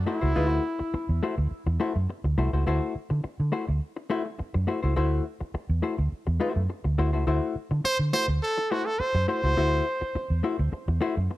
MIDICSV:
0, 0, Header, 1, 6, 480
1, 0, Start_track
1, 0, Tempo, 576369
1, 296, Time_signature, 4, 2, 24, 8
1, 9473, End_track
2, 0, Start_track
2, 0, Title_t, "Trumpet"
2, 0, Program_c, 0, 56
2, 45, Note_on_c, 0, 64, 87
2, 979, Note_off_c, 0, 64, 0
2, 6535, Note_on_c, 0, 72, 106
2, 6644, Note_off_c, 0, 72, 0
2, 6772, Note_on_c, 0, 72, 103
2, 6881, Note_off_c, 0, 72, 0
2, 7018, Note_on_c, 0, 69, 93
2, 7256, Note_on_c, 0, 66, 85
2, 7268, Note_off_c, 0, 69, 0
2, 7377, Note_on_c, 0, 69, 88
2, 7390, Note_off_c, 0, 66, 0
2, 7490, Note_on_c, 0, 72, 87
2, 7502, Note_off_c, 0, 69, 0
2, 7728, Note_off_c, 0, 72, 0
2, 7733, Note_on_c, 0, 72, 95
2, 8660, Note_off_c, 0, 72, 0
2, 9473, End_track
3, 0, Start_track
3, 0, Title_t, "Hollow-body jazz guitar"
3, 0, Program_c, 1, 26
3, 54, Note_on_c, 1, 57, 70
3, 57, Note_on_c, 1, 64, 71
3, 60, Note_on_c, 1, 66, 73
3, 63, Note_on_c, 1, 72, 72
3, 155, Note_off_c, 1, 57, 0
3, 156, Note_off_c, 1, 64, 0
3, 158, Note_off_c, 1, 66, 0
3, 160, Note_off_c, 1, 72, 0
3, 178, Note_on_c, 1, 72, 64
3, 183, Note_on_c, 1, 66, 63
3, 185, Note_on_c, 1, 64, 55
3, 190, Note_on_c, 1, 57, 52
3, 270, Note_off_c, 1, 72, 0
3, 272, Note_off_c, 1, 66, 0
3, 273, Note_off_c, 1, 64, 0
3, 275, Note_off_c, 1, 57, 0
3, 294, Note_on_c, 1, 56, 85
3, 298, Note_on_c, 1, 63, 88
3, 298, Note_on_c, 1, 65, 102
3, 301, Note_on_c, 1, 71, 92
3, 386, Note_off_c, 1, 56, 0
3, 386, Note_on_c, 1, 57, 85
3, 389, Note_off_c, 1, 63, 0
3, 389, Note_on_c, 1, 64, 88
3, 390, Note_off_c, 1, 65, 0
3, 390, Note_on_c, 1, 66, 102
3, 393, Note_off_c, 1, 71, 0
3, 393, Note_on_c, 1, 72, 92
3, 517, Note_off_c, 1, 57, 0
3, 519, Note_off_c, 1, 64, 0
3, 519, Note_off_c, 1, 66, 0
3, 521, Note_off_c, 1, 72, 0
3, 1021, Note_on_c, 1, 57, 68
3, 1025, Note_on_c, 1, 64, 62
3, 1026, Note_on_c, 1, 66, 68
3, 1029, Note_on_c, 1, 72, 69
3, 1120, Note_off_c, 1, 57, 0
3, 1121, Note_off_c, 1, 64, 0
3, 1122, Note_off_c, 1, 66, 0
3, 1124, Note_off_c, 1, 72, 0
3, 1497, Note_on_c, 1, 57, 82
3, 1501, Note_on_c, 1, 64, 91
3, 1505, Note_on_c, 1, 66, 87
3, 1505, Note_on_c, 1, 72, 85
3, 1615, Note_off_c, 1, 72, 0
3, 1622, Note_off_c, 1, 66, 0
3, 1623, Note_off_c, 1, 64, 0
3, 1625, Note_off_c, 1, 57, 0
3, 1980, Note_on_c, 1, 57, 72
3, 1980, Note_on_c, 1, 64, 74
3, 1985, Note_on_c, 1, 72, 77
3, 1986, Note_on_c, 1, 66, 70
3, 2080, Note_off_c, 1, 57, 0
3, 2080, Note_off_c, 1, 64, 0
3, 2082, Note_off_c, 1, 72, 0
3, 2083, Note_off_c, 1, 66, 0
3, 2109, Note_on_c, 1, 72, 63
3, 2112, Note_on_c, 1, 66, 58
3, 2114, Note_on_c, 1, 64, 54
3, 2119, Note_on_c, 1, 57, 47
3, 2197, Note_off_c, 1, 72, 0
3, 2198, Note_off_c, 1, 66, 0
3, 2199, Note_off_c, 1, 64, 0
3, 2201, Note_off_c, 1, 57, 0
3, 2218, Note_on_c, 1, 57, 87
3, 2222, Note_on_c, 1, 64, 92
3, 2226, Note_on_c, 1, 66, 100
3, 2229, Note_on_c, 1, 72, 98
3, 2440, Note_off_c, 1, 57, 0
3, 2442, Note_off_c, 1, 64, 0
3, 2444, Note_off_c, 1, 66, 0
3, 2446, Note_off_c, 1, 72, 0
3, 2931, Note_on_c, 1, 57, 68
3, 2934, Note_on_c, 1, 64, 71
3, 2936, Note_on_c, 1, 66, 77
3, 2939, Note_on_c, 1, 72, 81
3, 3035, Note_off_c, 1, 57, 0
3, 3037, Note_off_c, 1, 64, 0
3, 3038, Note_off_c, 1, 66, 0
3, 3039, Note_off_c, 1, 72, 0
3, 3411, Note_on_c, 1, 57, 100
3, 3416, Note_on_c, 1, 64, 99
3, 3418, Note_on_c, 1, 66, 92
3, 3420, Note_on_c, 1, 72, 94
3, 3527, Note_off_c, 1, 72, 0
3, 3532, Note_off_c, 1, 66, 0
3, 3534, Note_off_c, 1, 64, 0
3, 3543, Note_off_c, 1, 57, 0
3, 3890, Note_on_c, 1, 57, 72
3, 3895, Note_on_c, 1, 64, 71
3, 3897, Note_on_c, 1, 66, 75
3, 3900, Note_on_c, 1, 72, 66
3, 3995, Note_off_c, 1, 57, 0
3, 3998, Note_off_c, 1, 64, 0
3, 3998, Note_off_c, 1, 66, 0
3, 4000, Note_off_c, 1, 72, 0
3, 4019, Note_on_c, 1, 72, 65
3, 4025, Note_on_c, 1, 66, 57
3, 4028, Note_on_c, 1, 64, 58
3, 4032, Note_on_c, 1, 57, 53
3, 4112, Note_off_c, 1, 72, 0
3, 4115, Note_off_c, 1, 66, 0
3, 4116, Note_off_c, 1, 64, 0
3, 4118, Note_off_c, 1, 57, 0
3, 4131, Note_on_c, 1, 57, 89
3, 4135, Note_on_c, 1, 64, 92
3, 4136, Note_on_c, 1, 66, 85
3, 4140, Note_on_c, 1, 72, 101
3, 4357, Note_off_c, 1, 57, 0
3, 4359, Note_off_c, 1, 64, 0
3, 4360, Note_off_c, 1, 66, 0
3, 4361, Note_off_c, 1, 72, 0
3, 4850, Note_on_c, 1, 57, 58
3, 4853, Note_on_c, 1, 64, 64
3, 4857, Note_on_c, 1, 72, 68
3, 4858, Note_on_c, 1, 66, 68
3, 4955, Note_off_c, 1, 57, 0
3, 4956, Note_off_c, 1, 64, 0
3, 4959, Note_off_c, 1, 66, 0
3, 4959, Note_off_c, 1, 72, 0
3, 5328, Note_on_c, 1, 57, 76
3, 5333, Note_on_c, 1, 64, 77
3, 5336, Note_on_c, 1, 66, 93
3, 5337, Note_on_c, 1, 72, 85
3, 5447, Note_off_c, 1, 72, 0
3, 5449, Note_off_c, 1, 66, 0
3, 5453, Note_off_c, 1, 64, 0
3, 5504, Note_off_c, 1, 57, 0
3, 5814, Note_on_c, 1, 57, 67
3, 5817, Note_on_c, 1, 64, 78
3, 5821, Note_on_c, 1, 66, 76
3, 5823, Note_on_c, 1, 72, 76
3, 5917, Note_off_c, 1, 57, 0
3, 5918, Note_off_c, 1, 64, 0
3, 5920, Note_off_c, 1, 66, 0
3, 5921, Note_off_c, 1, 72, 0
3, 5937, Note_on_c, 1, 72, 68
3, 5941, Note_on_c, 1, 66, 67
3, 5943, Note_on_c, 1, 64, 53
3, 5946, Note_on_c, 1, 57, 57
3, 6030, Note_off_c, 1, 72, 0
3, 6032, Note_off_c, 1, 66, 0
3, 6033, Note_off_c, 1, 64, 0
3, 6035, Note_off_c, 1, 57, 0
3, 6053, Note_on_c, 1, 57, 86
3, 6054, Note_on_c, 1, 64, 85
3, 6059, Note_on_c, 1, 72, 83
3, 6060, Note_on_c, 1, 66, 93
3, 6277, Note_off_c, 1, 57, 0
3, 6278, Note_off_c, 1, 64, 0
3, 6280, Note_off_c, 1, 72, 0
3, 6281, Note_off_c, 1, 66, 0
3, 6772, Note_on_c, 1, 57, 60
3, 6772, Note_on_c, 1, 64, 57
3, 6776, Note_on_c, 1, 66, 68
3, 6778, Note_on_c, 1, 72, 75
3, 6875, Note_off_c, 1, 57, 0
3, 6875, Note_off_c, 1, 64, 0
3, 6877, Note_off_c, 1, 66, 0
3, 6878, Note_off_c, 1, 72, 0
3, 7256, Note_on_c, 1, 57, 70
3, 7258, Note_on_c, 1, 64, 81
3, 7260, Note_on_c, 1, 66, 86
3, 7263, Note_on_c, 1, 72, 83
3, 7375, Note_off_c, 1, 72, 0
3, 7378, Note_off_c, 1, 66, 0
3, 7380, Note_off_c, 1, 64, 0
3, 7385, Note_off_c, 1, 57, 0
3, 7728, Note_on_c, 1, 57, 62
3, 7730, Note_on_c, 1, 64, 68
3, 7735, Note_on_c, 1, 66, 64
3, 7736, Note_on_c, 1, 72, 72
3, 7832, Note_off_c, 1, 57, 0
3, 7834, Note_off_c, 1, 64, 0
3, 7836, Note_off_c, 1, 66, 0
3, 7836, Note_off_c, 1, 72, 0
3, 7857, Note_on_c, 1, 72, 64
3, 7861, Note_on_c, 1, 66, 63
3, 7866, Note_on_c, 1, 64, 54
3, 7867, Note_on_c, 1, 57, 49
3, 7949, Note_off_c, 1, 72, 0
3, 7951, Note_off_c, 1, 66, 0
3, 7953, Note_off_c, 1, 64, 0
3, 7954, Note_off_c, 1, 57, 0
3, 7968, Note_on_c, 1, 57, 86
3, 7970, Note_on_c, 1, 64, 93
3, 7976, Note_on_c, 1, 66, 103
3, 7977, Note_on_c, 1, 72, 102
3, 8193, Note_off_c, 1, 57, 0
3, 8195, Note_off_c, 1, 64, 0
3, 8198, Note_off_c, 1, 66, 0
3, 8198, Note_off_c, 1, 72, 0
3, 8688, Note_on_c, 1, 57, 63
3, 8693, Note_on_c, 1, 64, 80
3, 8697, Note_on_c, 1, 66, 72
3, 8699, Note_on_c, 1, 72, 73
3, 8792, Note_off_c, 1, 57, 0
3, 8794, Note_off_c, 1, 64, 0
3, 8796, Note_off_c, 1, 66, 0
3, 8797, Note_off_c, 1, 72, 0
3, 9166, Note_on_c, 1, 57, 86
3, 9172, Note_on_c, 1, 64, 92
3, 9174, Note_on_c, 1, 66, 91
3, 9176, Note_on_c, 1, 72, 97
3, 9297, Note_off_c, 1, 72, 0
3, 9298, Note_off_c, 1, 57, 0
3, 9299, Note_off_c, 1, 66, 0
3, 9301, Note_off_c, 1, 64, 0
3, 9473, End_track
4, 0, Start_track
4, 0, Title_t, "Fingered electric bass"
4, 0, Program_c, 2, 33
4, 189, Note_on_c, 2, 37, 91
4, 274, Note_off_c, 2, 37, 0
4, 301, Note_on_c, 2, 38, 95
4, 484, Note_off_c, 2, 38, 0
4, 909, Note_on_c, 2, 40, 92
4, 994, Note_off_c, 2, 40, 0
4, 1147, Note_on_c, 2, 38, 90
4, 1233, Note_off_c, 2, 38, 0
4, 1385, Note_on_c, 2, 40, 92
4, 1472, Note_off_c, 2, 40, 0
4, 1629, Note_on_c, 2, 42, 77
4, 1714, Note_off_c, 2, 42, 0
4, 1866, Note_on_c, 2, 38, 76
4, 1952, Note_off_c, 2, 38, 0
4, 1981, Note_on_c, 2, 36, 95
4, 2078, Note_off_c, 2, 36, 0
4, 2107, Note_on_c, 2, 37, 88
4, 2193, Note_off_c, 2, 37, 0
4, 2223, Note_on_c, 2, 38, 115
4, 2319, Note_off_c, 2, 38, 0
4, 2587, Note_on_c, 2, 50, 93
4, 2674, Note_off_c, 2, 50, 0
4, 2829, Note_on_c, 2, 50, 106
4, 2915, Note_off_c, 2, 50, 0
4, 3070, Note_on_c, 2, 38, 96
4, 3155, Note_off_c, 2, 38, 0
4, 3790, Note_on_c, 2, 42, 87
4, 3876, Note_off_c, 2, 42, 0
4, 4028, Note_on_c, 2, 37, 84
4, 4114, Note_off_c, 2, 37, 0
4, 4139, Note_on_c, 2, 38, 103
4, 4324, Note_off_c, 2, 38, 0
4, 4743, Note_on_c, 2, 40, 89
4, 4831, Note_off_c, 2, 40, 0
4, 4985, Note_on_c, 2, 38, 87
4, 5072, Note_off_c, 2, 38, 0
4, 5224, Note_on_c, 2, 40, 87
4, 5312, Note_off_c, 2, 40, 0
4, 5463, Note_on_c, 2, 42, 80
4, 5551, Note_off_c, 2, 42, 0
4, 5702, Note_on_c, 2, 38, 87
4, 5790, Note_off_c, 2, 38, 0
4, 5816, Note_on_c, 2, 38, 84
4, 5942, Note_off_c, 2, 38, 0
4, 5942, Note_on_c, 2, 37, 82
4, 6030, Note_off_c, 2, 37, 0
4, 6052, Note_on_c, 2, 38, 96
4, 6152, Note_off_c, 2, 38, 0
4, 6421, Note_on_c, 2, 50, 98
4, 6509, Note_off_c, 2, 50, 0
4, 6657, Note_on_c, 2, 50, 92
4, 6747, Note_off_c, 2, 50, 0
4, 6896, Note_on_c, 2, 38, 90
4, 6986, Note_off_c, 2, 38, 0
4, 7617, Note_on_c, 2, 42, 87
4, 7706, Note_off_c, 2, 42, 0
4, 7858, Note_on_c, 2, 37, 97
4, 7947, Note_off_c, 2, 37, 0
4, 7974, Note_on_c, 2, 38, 92
4, 8160, Note_off_c, 2, 38, 0
4, 8580, Note_on_c, 2, 40, 79
4, 8667, Note_off_c, 2, 40, 0
4, 8822, Note_on_c, 2, 38, 100
4, 8909, Note_off_c, 2, 38, 0
4, 9060, Note_on_c, 2, 40, 103
4, 9147, Note_off_c, 2, 40, 0
4, 9304, Note_on_c, 2, 42, 73
4, 9389, Note_off_c, 2, 42, 0
4, 9473, End_track
5, 0, Start_track
5, 0, Title_t, "Muted fingered electric bass strokes"
5, 670, Note_on_c, 9, 29, 49
5, 754, Note_off_c, 9, 29, 0
5, 782, Note_on_c, 9, 29, 48
5, 865, Note_off_c, 9, 29, 0
5, 1258, Note_on_c, 9, 29, 49
5, 1341, Note_off_c, 9, 29, 0
5, 2460, Note_on_c, 9, 29, 42
5, 2544, Note_off_c, 9, 29, 0
5, 2701, Note_on_c, 9, 29, 50
5, 2784, Note_off_c, 9, 29, 0
5, 3664, Note_on_c, 9, 29, 43
5, 3748, Note_off_c, 9, 29, 0
5, 4507, Note_on_c, 9, 29, 48
5, 4590, Note_off_c, 9, 29, 0
5, 4616, Note_on_c, 9, 29, 53
5, 4699, Note_off_c, 9, 29, 0
5, 5099, Note_on_c, 9, 29, 44
5, 5183, Note_off_c, 9, 29, 0
5, 6292, Note_on_c, 9, 29, 41
5, 6376, Note_off_c, 9, 29, 0
5, 6531, Note_on_c, 9, 29, 46
5, 6615, Note_off_c, 9, 29, 0
5, 7493, Note_on_c, 9, 29, 46
5, 7576, Note_off_c, 9, 29, 0
5, 8342, Note_on_c, 9, 29, 47
5, 8425, Note_off_c, 9, 29, 0
5, 8455, Note_on_c, 9, 29, 51
5, 8538, Note_off_c, 9, 29, 0
5, 8931, Note_on_c, 9, 29, 47
5, 9014, Note_off_c, 9, 29, 0
5, 9473, End_track
6, 0, Start_track
6, 0, Title_t, "Muted hollow-body jazz guitar strokes"
6, 660, Note_on_c, 9, 29, 42
6, 743, Note_off_c, 9, 29, 0
6, 780, Note_on_c, 9, 29, 50
6, 864, Note_off_c, 9, 29, 0
6, 1149, Note_on_c, 9, 29, 47
6, 1232, Note_off_c, 9, 29, 0
6, 1387, Note_on_c, 9, 29, 42
6, 1471, Note_off_c, 9, 29, 0
6, 1625, Note_on_c, 9, 29, 43
6, 1709, Note_off_c, 9, 29, 0
6, 1744, Note_on_c, 9, 29, 37
6, 1827, Note_off_c, 9, 29, 0
6, 1869, Note_on_c, 9, 29, 41
6, 1952, Note_off_c, 9, 29, 0
6, 2582, Note_on_c, 9, 29, 53
6, 2665, Note_off_c, 9, 29, 0
6, 2695, Note_on_c, 9, 29, 40
6, 2778, Note_off_c, 9, 29, 0
6, 3060, Note_on_c, 9, 29, 48
6, 3144, Note_off_c, 9, 29, 0
6, 3302, Note_on_c, 9, 29, 42
6, 3385, Note_off_c, 9, 29, 0
6, 3537, Note_on_c, 9, 29, 47
6, 3620, Note_off_c, 9, 29, 0
6, 3653, Note_on_c, 9, 29, 37
6, 3736, Note_off_c, 9, 29, 0
6, 3784, Note_on_c, 9, 29, 51
6, 3867, Note_off_c, 9, 29, 0
6, 4502, Note_on_c, 9, 29, 40
6, 4585, Note_off_c, 9, 29, 0
6, 4616, Note_on_c, 9, 29, 43
6, 4700, Note_off_c, 9, 29, 0
6, 4982, Note_on_c, 9, 29, 41
6, 5065, Note_off_c, 9, 29, 0
6, 5219, Note_on_c, 9, 29, 37
6, 5302, Note_off_c, 9, 29, 0
6, 5457, Note_on_c, 9, 29, 44
6, 5540, Note_off_c, 9, 29, 0
6, 5574, Note_on_c, 9, 29, 41
6, 5657, Note_off_c, 9, 29, 0
6, 5700, Note_on_c, 9, 29, 40
6, 5783, Note_off_c, 9, 29, 0
6, 6420, Note_on_c, 9, 29, 49
6, 6503, Note_off_c, 9, 29, 0
6, 6532, Note_on_c, 9, 29, 44
6, 6616, Note_off_c, 9, 29, 0
6, 6907, Note_on_c, 9, 29, 37
6, 6990, Note_off_c, 9, 29, 0
6, 7141, Note_on_c, 9, 29, 43
6, 7225, Note_off_c, 9, 29, 0
6, 7385, Note_on_c, 9, 29, 50
6, 7468, Note_off_c, 9, 29, 0
6, 7495, Note_on_c, 9, 29, 36
6, 7578, Note_off_c, 9, 29, 0
6, 7619, Note_on_c, 9, 29, 54
6, 7702, Note_off_c, 9, 29, 0
6, 8338, Note_on_c, 9, 29, 43
6, 8421, Note_off_c, 9, 29, 0
6, 8456, Note_on_c, 9, 29, 45
6, 8539, Note_off_c, 9, 29, 0
6, 8820, Note_on_c, 9, 29, 52
6, 8903, Note_off_c, 9, 29, 0
6, 8930, Note_on_c, 9, 29, 47
6, 9013, Note_off_c, 9, 29, 0
6, 9063, Note_on_c, 9, 29, 41
6, 9146, Note_off_c, 9, 29, 0
6, 9307, Note_on_c, 9, 29, 56
6, 9390, Note_off_c, 9, 29, 0
6, 9415, Note_on_c, 9, 29, 37
6, 9473, Note_off_c, 9, 29, 0
6, 9473, End_track
0, 0, End_of_file